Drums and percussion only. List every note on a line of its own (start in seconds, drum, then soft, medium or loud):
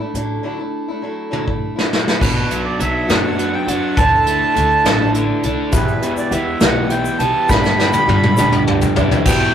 0.15 closed hi-hat soft
1.33 high tom soft
1.48 kick soft
1.79 snare medium
1.93 snare medium
2.08 snare medium
2.21 kick loud
2.21 crash loud
2.51 closed hi-hat medium
2.80 closed hi-hat medium
3.09 snare loud
3.09 closed hi-hat medium
3.39 closed hi-hat medium
3.68 closed hi-hat medium
3.97 kick loud
3.97 closed hi-hat medium
4.27 closed hi-hat medium
4.56 closed hi-hat medium
4.85 snare loud
4.85 closed hi-hat medium
5.14 closed hi-hat medium
5.43 closed hi-hat medium
5.72 kick loud
5.72 closed hi-hat medium
5.72 shaker medium
5.88 shaker soft
6.02 closed hi-hat medium
6.02 shaker soft
6.17 shaker medium
6.32 closed hi-hat medium
6.32 shaker soft
6.60 snare loud
6.60 closed hi-hat medium
6.60 shaker medium
6.90 closed hi-hat medium
6.90 shaker soft
7.05 shaker medium
7.20 closed hi-hat medium
7.20 shaker soft
7.49 kick loud
7.49 snare medium
7.49 shaker medium
7.64 snare medium
7.64 shaker soft
7.80 snare medium
7.93 high tom medium
7.93 shaker medium
8.09 high tom medium
8.23 mid tom medium
8.37 mid tom medium
8.37 shaker loud
8.52 mid tom medium
8.52 shaker soft
8.67 mid tom medium
8.81 floor tom medium
8.81 shaker medium
8.96 floor tom medium
8.96 shaker soft
9.11 floor tom medium
9.11 shaker soft
9.25 kick loud
9.25 crash loud
9.25 shaker loud